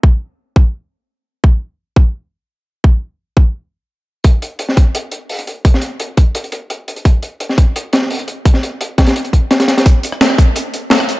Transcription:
\new DrumStaff \with { instrumentName = "Drums" } \drummode { \time 4/4 \tempo 4 = 171 bd4 r8 bd8 r4 r4 | bd4 r8 bd8 r4 r4 | bd4 r8 bd8 r4 r4 | <hh bd>8 hh8 hh16 sn16 <hh bd>8 hh8 hh8 hho16 hh16 hh8 |
<hh bd>16 sn16 hh8 hh8 <hh bd>8 hh16 hh16 hh8 hh8 hh16 hh16 | <hh bd>8 hh8 hh16 sn16 <hh bd>8 hh8 <hh sn>16 sn16 hho16 hh16 hh8 | <hh bd>16 sn16 hh8 hh8 <hh bd sn>16 <hh sn>16 hh16 hh16 <hh bd>8 <hh sn>16 <hh sn>16 <hh sn>16 <hh sn>16 | <hh bd>8 hh16 ss16 <hh sn>16 <ss sn>16 <hh bd>8 hh8 hh8 <hh hho sn>16 <hh ss>16 hh8 | }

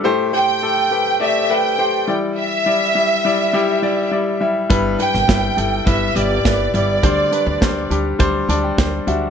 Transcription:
<<
  \new Staff \with { instrumentName = "Violin section" } { \time 4/4 \key g \major \tempo 4 = 103 r8 g''4. e''8 g''4 r8 | e''2. r4 | r8 g''4. e''8 d''4 d''8~ | d''4. r2 r8 | }
  \new Staff \with { instrumentName = "Grand piano" } { \time 4/4 \key g \major << { a,4. r2 e8~ | e4 r2. | g,4. r2 r8 | d4. r4 a''16 g''16 g''8 e''8 | } \\ { <a g' c''>8 <a g' c''>8 <a g' a'>8 <a g' b'>8 <a g' d''>8 <a g' b'>8 <a g' c''>8 <g e' d''>8~ | <g e' d''>8 <g e' d''>8 <g e' e''>8 <g e' d''>8 <g e' g'>8 <g e' d''>8 <g e' d''>8 <g e' e''>8 | <g e' b'>8 <g e' b'>8 <g e' b'>8 <g e' a'>8 <g e' b'>8 <g e' g'>8 <g e' b'>8 <g e' g'>8 | <g d' c''>8 <g d' b'>8 <g d' c''>8 <g d' g'>8 <g d' c''>8 <g d' d''>8 <g d' c''>8 <g d' fis'>8 | } >> }
  \new Staff \with { instrumentName = "Upright bass" } { \clef bass \time 4/4 \key g \major r1 | r1 | g,,8 r16 g,,16 g,,8 g,,8 g,,8 g,,8 g,,8 g,,8 | d,8 r16 d,16 d,8 d,8 d,8 d,8 d,8 d,8 | }
  \new DrumStaff \with { instrumentName = "Drums" } \drummode { \time 4/4 r4 r4 r4 r4 | r4 r4 r4 r4 | <hh bd>8 hh16 sn16 <hh bd sn>8 hh8 <hh bd>8 hh8 <hh bd sn>8 hh8 | <hh bd>8 hh8 <hh bd sn>8 hh8 <hh bd>8 hh8 <hh bd sn>8 hh8 | }
>>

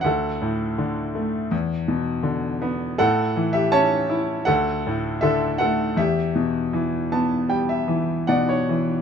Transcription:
<<
  \new Staff \with { instrumentName = "Grand piano" } { \time 4/4 \key e \dorian \tempo 4 = 80 << { <a' fis''>2 r2 | <a' fis''>8. <g' e''>16 <cis'' a''>4 <a' fis''>4 <a' e''>8 <a' fis''>8 | <g' e''>2. fis''4 | } \\ { r1 | r1 | r4. a''8 g''16 e''8. d''16 cis''8. | } >> }
  \new Staff \with { instrumentName = "Grand piano" } { \clef bass \time 4/4 \key e \dorian d,8 a,8 d8 a8 e,8 b,8 d8 b8 | a,8 e8 cis'8 e'8 d,8 a,8 d8 a8 | e,8 b,8 e8 b8 g8 e8 b,8 e8 | }
>>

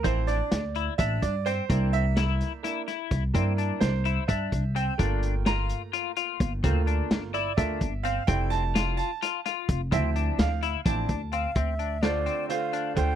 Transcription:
<<
  \new Staff \with { instrumentName = "Flute" } { \time 7/8 \key d \minor \tempo 4 = 128 r2. r8 | r2. r8 | r2. r8 | r2. r8 |
r2. r8 | r2. r8 | r2. f''8 | e''4 d''4 f''4 g''8 | }
  \new Staff \with { instrumentName = "Grand piano" } { \time 7/8 \key d \minor << { c''8 d''4. e''8 d''8 c''8~ | c''8 e''4. r4. | r4 c''4 e''4 g''8~ | g''4 bes''4. r4 |
r4. d''8 e''4 f''8 | g''8 a''4 a''4 r4 | e''4 f''4 a''4. | r4 <d a f' c''>4 <d a f' c''>4 <d a f' c''>8 | } \\ { <f c' e'>8 r2. | <bes d' e'>2 <bes d' e'>8 r4 | <bes d' e'>4. r2 | <a bes f'>2.~ <a bes f'>8 |
<a bes f'>4. r8 <a bes f'>8 r4 | <g a e'>4. r2 | <f c' e'>4. r8 <f c' e'>8 r4 | r2. r8 | } >> }
  \new Staff \with { instrumentName = "Clean electric guitar" } { \time 7/8 \key d \minor c'8 d'4 e'8 d'4 c'8 | c'4 e'4 e'8 e'4 | c'8 d'4 e'8 d'4 c'8 | d'4 f'4 f'8 f'4 |
c'8 d'4 e'8 d'4 c'8 | c'4 f'4 f'8 f'4 | c'8 d'4 e'8 d'4 c'8 | c'8 d'8 d'8 c'4 d'4 | }
  \new Staff \with { instrumentName = "Upright bass" } { \clef bass \time 7/8 \key d \minor a,,4 d,4 a,,8 g,4 | c,2 r4 c,8 | g,4 c,4 g,8 c,4 | g,,2 r4 g,,8 |
d,4 g,,4 d,8 g,,4 | f,,2 r4 f,,8 | d,4 d,4 a,,8 d,4 | d,2 r4 d,8 | }
  \new DrumStaff \with { instrumentName = "Drums" } \drummode { \time 7/8 <hh bd>8 <hh sn>8 <hh sn>8 hh8 <hh bd>8 <hh bd>8 <hh sn>8 | <hh bd>8 hh8 <hh sn>8 <hh sn>8 <hh sn>8 <hh sn>8 <hh bd sn>8 | <hh bd>8 hh8 <hh sn>8 hh8 <hh bd>8 <hh bd>8 hh8 | <hh bd>8 hh8 <hh sn>8 hh8 hh8 hh8 <hh bd>8 |
<hh bd>8 hh8 <hh sn>8 hh8 <hh bd sn>8 <hh bd>8 hh8 | <hh bd>8 <hh sn>8 <hh sn>8 hh8 <hh sn>8 <hh sn>8 <hh bd>8 | <hh bd>8 hh8 <hh sn>8 hh8 <hh bd sn>8 <hh bd>8 hh8 | <hh bd>8 hh8 <hh sn>8 hh8 hh8 hh8 <hh bd>8 | }
>>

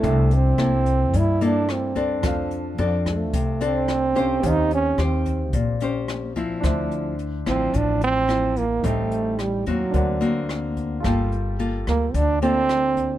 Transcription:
<<
  \new Staff \with { instrumentName = "Grand piano" } { \time 4/4 \key d \minor \tempo 4 = 109 <d' a' e''>1 | <d' a' c'' f''>2.~ <d' a' c'' f''>8 <d' a' c'' f''>8 | <c' g' c'' f''>1 | <d' c'' e''>1 |
<ees' a' c'' g''>2 <d' ais' c'' fis''>2 | <f' a' g''>1 | }
  \new Staff \with { instrumentName = "Nylon-string guitar" } { \time 4/4 \key d \minor << { <e' a'>4 <bes e' a'>4. <bes e' a'>4 <c' d' a'>8~ | <c' d' a'>4 <c' d' a'>4 r8 <c' d' a'>4 <cis' g' c''>8~ | <cis' g' c''>4 <g' c''>4. <des' g' c''>4 <f c' e'>8~ | <f c' e'>4 r8 <f c' e'>4. <f c' e'>8 r8 |
<g c' ees'>4. <bes c' fis'>4 <ais c' fis'>4. | <bes f' a'>4 <bes f' a'>4 r8 <bes f' a'>4. | } \\ { c2 g,2 | f2 c2 | ees2 bes,2 | d2 a,2 |
a,2 d2 | g2 d2 | } >> }
  \new Staff \with { instrumentName = "Trombone" } { \time 4/4 \key d \minor a8 c'4. e'8 d'8 c'4 | r4. a4 c'4. | ees'8 des'8 c'4 r2 | r4. c'8 d'8 c'4 bes8 |
a4 g8 fis4. r4 | r4. bes8 d'8 c'4. | }
  \new Staff \with { instrumentName = "Upright bass" } { \clef bass \time 4/4 \key d \minor c,4 c,4 g,2 | f,4 f,4 c,2 | ees,4 ees,4 bes,,2 | d,4. a,,8 a,,2 |
a,,4. ees,8 d,2 | g,,4. d,8 d,2 | }
  \new DrumStaff \with { instrumentName = "Drums" } \drummode { \time 4/4 <hh bd>8 hh8 <hh ss>8 <hh bd>8 <hh bd>8 hh8 <hh ss>8 <hh bd>8 | <hh bd ss>8 hh8 hh8 <hh bd ss>8 <hh bd>8 hh8 <hh ss>8 <hh bd>8 | <hh bd>8 hh8 <hh ss>8 <hh bd>8 <hh bd>8 hh8 <hh ss>8 <hh bd>8 | <hh bd ss>8 hh8 hh8 <hh bd ss>8 <hh bd>8 hh8 <hh ss>8 <hh bd>8 |
<hh bd>8 hh8 <hh ss>8 <hh bd>8 <hh bd>8 hh8 <hh ss>8 <hh bd>8 | <hh bd ss>8 hh8 hh8 <hh bd ss>8 <hh bd>8 hh8 <hh ss>8 <hh bd>8 | }
>>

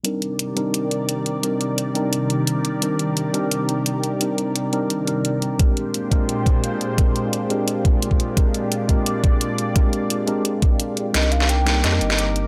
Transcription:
<<
  \new Staff \with { instrumentName = "Soft synth lead" } { \time 4/4 \key c \minor \tempo 4 = 173 r1 | r1 | r1 | r1 |
r1 | r1 | r1 | r1 |
ees''8 f''8 g''4 ees''2 | }
  \new Staff \with { instrumentName = "Analog synth pad" } { \time 4/4 \key c \minor << { d''1~ | d''1~ | d''1~ | d''1 |
c''1~ | c''1 | d''1~ | d''1 |
r1 | } \\ { <c ees g' bes'>1~ | <c ees g' bes'>1~ | <c ees g' bes'>1~ | <c ees g' bes'>1 |
<bes, aes d' f' g'>1~ | <bes, aes d' f' g'>1~ | <bes, aes d' f' g'>1~ | <bes, aes d' f' g'>1 |
<g' bes' d'''>1 | } >> }
  \new Staff \with { instrumentName = "Tine electric piano" } { \time 4/4 \key c \minor <g c' d' ees' bes'>4. <g c' d' ees' bes'>2~ <g c' d' ees' bes'>8 | <g c' d' ees' bes'>4. <g c' d' ees' bes'>2~ <g c' d' ees' bes'>8 | <g c' d' ees' bes'>4. <g c' d' ees' bes'>2~ <g c' d' ees' bes'>8 | <g c' d' ees' bes'>4. <g c' d' ees' bes'>4 <g c' d' ees' bes'>4. |
<aes c' d' g' bes'>4. <aes c' d' g' bes'>2~ <aes c' d' g' bes'>8 | <aes c' d' g' bes'>4. <aes c' d' g' bes'>2~ <aes c' d' g' bes'>8 | <aes c' d' g' bes'>4. <aes c' d' g' bes'>2~ <aes c' d' g' bes'>8 | <aes c' d' g' bes'>4. <aes c' d' g' bes'>2~ <aes c' d' g' bes'>8 |
<g c' d' ees' bes'>4. <g bes c' ees' bes'>2~ <g bes c' ees' bes'>8 | }
  \new Staff \with { instrumentName = "Sub bass" } { \clef bass \time 4/4 \key c \minor r1 | r1 | r1 | r1 |
r1 | r1 | r1 | r1 |
c,2 f,8 g,,4. | }
  \new DrumStaff \with { instrumentName = "Drums" } \drummode { \time 4/4 hh8 hh8 hh8 hh8 hh8 hh8 hh8 hh8 | hh8 hh8 hh8 hh8 hh8 hh8 hh8 hh8 | hh8 hh8 hh8 hh8 hh8 hh8 hh8 hh8 | hh8 hh8 hh8 hh8 hh8 hh8 hh8 hh8 |
<hh bd>8 hh8 hh8 <hh bd>8 hh8 <hh bd>8 hh8 hh8 | <hh bd>8 hh8 hh8 hh8 hh8 <hh bd>8 hh16 bd16 hh8 | <hh bd>8 hh8 hh8 <hh bd>8 hh8 <hh bd>8 hh8 hh8 | <hh bd>8 hh8 hh8 hh8 hh8 <hh bd>8 hh8 hh8 |
<hh sn>16 hh16 hh16 sn16 hh8 <hh sn>8 <hh sn>16 ss16 hh16 <hh sn>16 hh8 hh8 | }
>>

